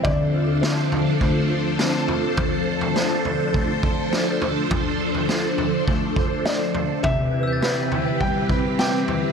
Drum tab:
SD |----o-------o---|----o-------o---|----o-------o---|----o-------o---|
FT |o-----o-o-----o-|o--o--o-o-----o-|o--o--o-o-----o-|o-----o-o-----o-|
BD |o-------o-------|o-------o-o-----|o-------o-o-----|o-------o-o-----|